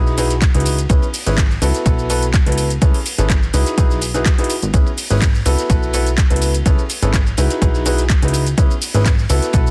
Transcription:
Already playing: analog synth bass B1, grand piano D#4 E4 F#4 G#4 B4
0.07 snare, shaker
0.18 grand piano D#4 E4 F#4 G#4 B4, open hi-hat, ride, shaker
0.30 snare, closed hi-hat, shaker
0.41 kick, snare, clap, closed hi-hat, ride, shaker
0.54 analog synth bass C#2, grand piano D#4 E4 F#4 G#4 B4, closed hi-hat, shaker
0.60 closed hi-hat
0.65 open hi-hat, ride, shaker
0.78 closed hi-hat, shaker
0.89 analog synth bass C#2, grand piano B3 C#4 E4 G#4 B4, kick, closed hi-hat, ride, shaker
1.02 ride, shaker
1.14 open hi-hat, shaker
1.26 analog synth bass G#1, grand piano B3 C#4 E4 G#4 B4, snare, closed hi-hat, shaker
1.37 kick, snare, clap, closed hi-hat, ride, shaker
1.50 snare, shaker
1.62 analog synth bass C#2, grand piano B3 E4 F#4 A4 B4, open hi-hat, ride, shaker
1.75 snare, closed hi-hat, shaker
1.86 analog synth bass B1, grand piano B3 E4 F#4 A4 B4, kick, closed hi-hat, ride, shaker
1.99 shaker
2.10 grand piano B3 E4 F#4 A4 B4, open hi-hat, ride, shaker
2.23 closed hi-hat, shaker
2.34 kick, snare, clap, closed hi-hat, ride, shaker
2.46 analog synth bass C#2, grand piano B3 E4 F#4 A4 B4, snare, closed hi-hat, shaker
2.52 closed hi-hat
2.58 open hi-hat, ride, shaker
2.70 closed hi-hat, shaker
2.82 analog synth bass C#2, grand piano C#4 E4 G#4 A4 B4, kick, closed hi-hat, ride, shaker
2.94 open hi-hat, ride, shaker
3.06 open hi-hat, ride, shaker
3.18 analog synth bass G#1, grand piano C#4 E4 G#4 A4 B4, snare, closed hi-hat, shaker
3.29 kick, snare, clap, closed hi-hat, ride, shaker
3.43 snare, shaker
3.54 analog synth bass C#2, grand piano D#4 E4 F#4 G#4 B4, open hi-hat, ride, shaker
3.66 snare, closed hi-hat, shaker
3.78 analog synth bass B1, grand piano D#4 E4 F#4 G#4 B4, kick, closed hi-hat, ride, shaker
3.91 snare, shaker
4.01 open hi-hat, ride, shaker
4.14 grand piano D#4 E4 F#4 G#4 B4, snare, closed hi-hat, shaker
4.26 kick, snare, clap, closed hi-hat, ride, shaker
4.38 grand piano D#4 E4 F#4 G#4 B4, closed hi-hat, shaker
4.44 closed hi-hat
4.50 open hi-hat, ride, shaker
4.62 analog synth bass G#1, closed hi-hat, shaker
4.74 analog synth bass C#2, grand piano B3 C#4 E4 G#4 B4, kick, closed hi-hat, ride, shaker
4.86 ride, shaker
4.98 open hi-hat, shaker
5.10 analog synth bass G#1, grand piano B3 C#4 E4 G#4 B4, snare, closed hi-hat, shaker
5.21 kick, snare, clap, closed hi-hat, ride, shaker
5.35 snare, shaker
5.45 analog synth bass C#2, grand piano B3 E4 F#4 A4 B4, open hi-hat, ride, shaker
5.58 snare, closed hi-hat, shaker
5.70 analog synth bass B1, grand piano B3 E4 F#4 A4 B4, kick, closed hi-hat, ride, shaker
5.83 shaker
5.93 grand piano B3 E4 F#4 A4 B4, open hi-hat, ride, shaker
6.06 closed hi-hat, shaker
6.17 kick, snare, clap, closed hi-hat, ride, shaker
6.30 analog synth bass C#2, grand piano B3 E4 F#4 A4 B4, snare, closed hi-hat, shaker
6.36 closed hi-hat
6.41 open hi-hat, ride, shaker
6.54 closed hi-hat, shaker
6.66 analog synth bass C#2, grand piano C#4 E4 G#4 A4 B4, kick, closed hi-hat, ride, shaker
6.79 ride, shaker
6.89 open hi-hat, ride, shaker
7.02 analog synth bass G#1, grand piano C#4 E4 G#4 A4 B4, snare, closed hi-hat, shaker
7.14 kick, snare, clap, closed hi-hat, ride, shaker
7.25 snare, shaker
7.37 analog synth bass C#2, grand piano D#4 E4 F#4 G#4 B4, open hi-hat, ride, shaker
7.50 snare, closed hi-hat, shaker
7.62 analog synth bass B1, grand piano D#4 E4 F#4 G#4 B4, kick, closed hi-hat, ride, shaker
7.74 snare, shaker
7.86 grand piano D#4 E4 F#4 G#4 B4, open hi-hat, ride, shaker
7.98 snare, closed hi-hat, shaker
8.09 kick, snare, clap, closed hi-hat, ride, shaker
8.22 analog synth bass C#2, grand piano D#4 E4 F#4 G#4 B4, closed hi-hat, shaker
8.28 closed hi-hat
8.33 open hi-hat, ride, shaker
8.46 closed hi-hat, shaker
8.58 analog synth bass C#2, grand piano B3 C#4 E4 G#4 B4, kick, closed hi-hat, ride, shaker
8.71 ride, shaker
8.82 open hi-hat, shaker
8.94 analog synth bass G#1, grand piano B3 C#4 E4 G#4 B4, snare, closed hi-hat, shaker
9.06 kick, snare, clap, closed hi-hat, ride, shaker
9.19 snare, shaker
9.29 analog synth bass C#2, grand piano B3 E4 F#4 A4 B4, open hi-hat, ride, shaker
9.42 snare, closed hi-hat, shaker
9.53 analog synth bass B1, grand piano B3 E4 F#4 A4 B4, kick, closed hi-hat, ride, shaker
9.67 shaker

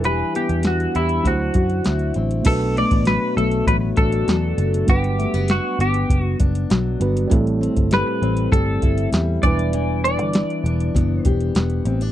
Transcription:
Already playing: picked electric bass E1, tine electric piano G3 D4 E4 B4, steel-string acoustic guitar E4
0.04 steel-string acoustic guitar E3 G4, clean electric guitar B4, closed hi-hat
0.35 steel-string acoustic guitar B3, clean electric guitar G4, closed hi-hat
0.49 picked electric bass E2, closed hi-hat
0.63 steel-string acoustic guitar D4, snare, closed hi-hat
0.67 clean electric guitar F#4
0.80 closed hi-hat
0.95 picked electric bass E2, clean electric guitar E4, steel-string acoustic guitar G4, closed hi-hat
1.09 closed hi-hat
1.22 picked electric bass D2, tine electric piano F3 D4 E4, kick, snare, closed hi-hat
1.26 steel-string acoustic guitar D3, tine electric piano F#3 C5, clean electric guitar F#4
1.54 picked electric bass F#2, steel-string acoustic guitar F#4, kick, closed hi-hat
1.70 closed hi-hat
1.84 picked electric bass D2, steel-string acoustic guitar E4, snare, closed hi-hat
1.99 closed hi-hat
2.14 picked electric bass A1, steel-string acoustic guitar C4, closed hi-hat
2.31 closed hi-hat
2.42 picked electric bass B1, tine electric piano A3 B3 D4 F#4, kick, closed hi-hat, crash
2.47 steel-string acoustic guitar B2, clean electric guitar A4, tine electric piano B4
2.61 closed hi-hat
2.77 steel-string acoustic guitar A3, clean electric guitar D5, closed hi-hat
2.91 picked electric bass A1, kick, closed hi-hat
3.05 steel-string acoustic guitar F#3, clean electric guitar B4, snare, closed hi-hat
3.37 picked electric bass B1, steel-string acoustic guitar A3, clean electric guitar A4, closed hi-hat
3.51 closed hi-hat
3.67 picked electric bass A1, steel-string acoustic guitar F#3, clean electric guitar B4, kick, closed hi-hat
3.97 picked electric bass A1, steel-string acoustic guitar D4, clean electric guitar A4, kick, closed hi-hat
4.12 closed hi-hat
4.28 picked electric bass E2, steel-string acoustic guitar F#3, snare, closed hi-hat
4.58 picked electric bass F#1, steel-string acoustic guitar A3, closed hi-hat
4.74 closed hi-hat
4.86 picked electric bass G1, tine electric piano G3 B3 D4 F#5, clean electric guitar G4, kick, closed hi-hat
4.91 tine electric piano B4
5.04 closed hi-hat
5.19 steel-string acoustic guitar A3, closed hi-hat
5.34 picked electric bass F#1, steel-string acoustic guitar B3, closed hi-hat
5.48 clean electric guitar F#4, snare, closed hi-hat
5.79 picked electric bass G1, steel-string acoustic guitar B3, clean electric guitar G4, closed hi-hat
5.94 closed hi-hat
6.10 picked electric bass F#1, kick, closed hi-hat
6.21 clean electric guitar F#4
6.40 picked electric bass F#1, steel-string acoustic guitar D4, kick, closed hi-hat
6.55 closed hi-hat
6.70 picked electric bass B1, steel-string acoustic guitar F#3, snare, closed hi-hat
6.99 picked electric bass G1, tine electric piano G3 B3 D4 F#4 B4, steel-string acoustic guitar B3, closed hi-hat
7.17 closed hi-hat
7.28 steel-string acoustic guitar A2, tine electric piano G3 A3 C4 E4, kick, closed hi-hat
7.32 picked electric bass A1, tine electric piano A4
7.47 closed hi-hat
7.61 steel-string acoustic guitar C4, closed hi-hat
7.76 picked electric bass G1, kick, closed hi-hat
7.91 steel-string acoustic guitar G3, clean electric guitar B4, snare, closed hi-hat
8.22 picked electric bass A1, steel-string acoustic guitar C4, closed hi-hat
8.37 closed hi-hat
8.52 picked electric bass G1, steel-string acoustic guitar G3, clean electric guitar A4, kick, closed hi-hat
8.82 picked electric bass G1, steel-string acoustic guitar E4, kick, closed hi-hat
8.98 closed hi-hat
9.12 picked electric bass E2, steel-string acoustic guitar G3, snare, closed hi-hat
9.41 picked electric bass E1, steel-string acoustic guitar E3, tine electric piano G3 B3 D4 E4, clean electric guitar D5, kick, closed hi-hat
9.47 tine electric piano B4
9.59 closed hi-hat
9.73 steel-string acoustic guitar E3, closed hi-hat
10.04 steel-string acoustic guitar D4, clean electric guitar D5, closed hi-hat
10.18 picked electric bass G1, closed hi-hat
10.33 steel-string acoustic guitar B3, snare, closed hi-hat
10.50 closed hi-hat
10.64 picked electric bass E1, steel-string acoustic guitar D4, closed hi-hat
10.80 closed hi-hat
10.95 picked electric bass F#1, steel-string acoustic guitar B3, kick, snare, closed hi-hat
11.21 clean electric guitar C5, closed hi-hat
11.25 picked electric bass E1, steel-string acoustic guitar G4, kick
11.41 closed hi-hat
11.55 picked electric bass E1, steel-string acoustic guitar B3, snare, closed hi-hat
11.70 closed hi-hat
11.85 picked electric bass A1, steel-string acoustic guitar C4, closed hi-hat
12.01 steel-string acoustic guitar D4, closed hi-hat

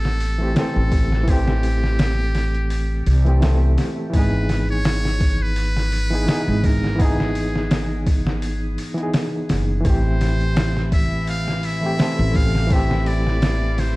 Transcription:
Already playing: upright bass A1, reed electric piano E3 A3 C4 G4, muted trumpet A4
0.05 snare
0.20 open hi-hat
0.38 reed electric piano E3 A3 C4
0.43 reed electric piano G4
0.55 reed electric piano E3 A3 C4, muted trumpet A4, snare, open hi-hat
0.59 reed electric piano A4
0.76 upright bass A1
0.92 kick, open hi-hat
1.12 snare
1.24 reed electric piano E3 A3, kick, open hi-hat
1.30 reed electric piano C4 G4, muted trumpet G4
1.48 snare
1.63 open hi-hat
1.84 snare
1.99 snare, open hi-hat
2.35 snare, open hi-hat
2.54 closed hi-hat
2.70 open hi-hat
3.06 upright bass C2, open hi-hat
3.25 reed electric piano E3 A3 C4, closed hi-hat
3.29 reed electric piano G4
3.40 reed electric piano E3 A3 C4, snare, open hi-hat
3.45 reed electric piano A4
3.78 snare, open hi-hat
4.10 upright bass G#1, reed electric piano E3 B3, kick, open hi-hat
4.16 reed electric piano D#4 G#4, muted trumpet B4
4.49 snare, open hi-hat
4.69 muted trumpet C#5, closed hi-hat
4.85 snare, open hi-hat
5.05 snare
5.20 kick, open hi-hat
5.42 muted trumpet B4
5.56 open hi-hat
5.77 snare
5.92 open hi-hat
6.11 reed electric piano E3 B3 D#4
6.15 reed electric piano G#4
6.26 reed electric piano E3 B3 D#4, snare, open hi-hat
6.31 reed electric piano G#4
6.48 upright bass G#1
6.64 muted trumpet A#4, kick, open hi-hat
6.84 snare
6.96 reed electric piano E3 B3, kick
7.00 reed electric piano D#4, muted trumpet G#4, open hi-hat
7.05 reed electric piano G#4
7.20 snare
7.35 open hi-hat
7.56 snare
7.71 snare, open hi-hat
8.07 kick, open hi-hat
8.27 snare
8.42 open hi-hat
8.78 open hi-hat
8.94 reed electric piano E3 B3, closed hi-hat
9.00 reed electric piano D#4 G#4
9.14 snare, open hi-hat
9.49 upright bass F#1, snare, open hi-hat
9.81 reed electric piano E3 A3, string section E4
9.85 upright bass A1, string section E3, reed electric piano C4, muted trumpet C5, kick, open hi-hat
9.90 reed electric piano G4
10.21 snare, open hi-hat
10.40 closed hi-hat
10.56 snare, open hi-hat
10.77 snare
10.92 muted trumpet E5, kick, open hi-hat
11.27 muted trumpet F5, open hi-hat
11.48 snare
11.63 muted trumpet E5, open hi-hat
11.81 reed electric piano E3 A3 C4
11.86 reed electric piano G4
11.97 reed electric piano E3 A3 C4, snare, open hi-hat
12.02 reed electric piano A4
12.19 upright bass A1
12.35 muted trumpet F5, kick, open hi-hat
12.55 snare
12.66 reed electric piano E3 A3, open hi-hat
12.71 reed electric piano C4, muted trumpet E5, kick
12.76 reed electric piano G4
12.91 snare
13.06 muted trumpet D5, open hi-hat
13.27 snare
13.42 snare, open hi-hat
13.78 muted trumpet C5, snare, open hi-hat

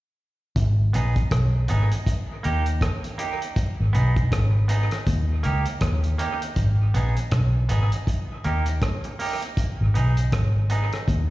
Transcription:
0.56 fingered electric bass G#1, kick, closed hi-hat
0.93 fingered electric bass A#1, clean electric guitar B3 D#4 G#4, closed hi-hat
1.16 kick, closed hi-hat
1.31 fingered electric bass B1, kick, cross-stick, closed hi-hat
1.68 fingered electric bass G#1, clean electric guitar B3 D#4 G#4, closed hi-hat
1.92 closed hi-hat
2.07 kick, closed hi-hat
2.43 fingered electric bass D#2, clean electric guitar A#3 D#4 G4, closed hi-hat
2.66 closed hi-hat
2.81 kick, cross-stick, closed hi-hat
3.04 closed hi-hat
3.18 clean electric guitar A#3 D#4 G4, closed hi-hat
3.42 closed hi-hat
3.56 kick, closed hi-hat
3.80 fingered electric bass G#1
3.93 fingered electric bass B1, clean electric guitar B3 D#4 G#4, closed hi-hat
4.17 kick, closed hi-hat
4.32 fingered electric bass G#1, kick, cross-stick, closed hi-hat
4.68 clean electric guitar B3 D#4 G#4, closed hi-hat
4.91 cross-stick, closed hi-hat
5.07 fingered electric bass D#2, kick, closed hi-hat
5.43 fingered electric bass C#2, clean electric guitar A#3 D#4 G4, closed hi-hat
5.66 closed hi-hat
5.81 fingered electric bass D#2, kick, cross-stick, closed hi-hat
6.04 closed hi-hat
6.18 clean electric guitar A#3 D#4 G4, closed hi-hat
6.42 closed hi-hat
6.56 fingered electric bass G#1, kick, closed hi-hat
6.94 fingered electric bass A#1, clean electric guitar B3 D#4 G#4, closed hi-hat
7.17 closed hi-hat
7.31 fingered electric bass B1, kick, cross-stick, closed hi-hat
7.69 fingered electric bass G#1, clean electric guitar B3 D#4 G#4, closed hi-hat
7.92 closed hi-hat
8.07 kick, closed hi-hat
8.44 fingered electric bass D#2, clean electric guitar A#3 D#4 G4, closed hi-hat
8.66 muted clean electric guitar stroke, closed hi-hat
8.82 kick, cross-stick, closed hi-hat
9.04 muted clean electric guitar stroke, closed hi-hat
9.19 clean electric guitar A#3 D#4 G4, open hi-hat
9.42 closed hi-hat
9.57 kick, closed hi-hat
9.81 fingered electric bass G#1
9.94 fingered electric bass B1, clean electric guitar B3 D#4 G#4, closed hi-hat
10.17 closed hi-hat
10.32 fingered electric bass G#1, kick, cross-stick, closed hi-hat
10.70 clean electric guitar B3 D#4 G#4, closed hi-hat
10.93 cross-stick, closed hi-hat
11.08 fingered electric bass D#2, kick, closed hi-hat

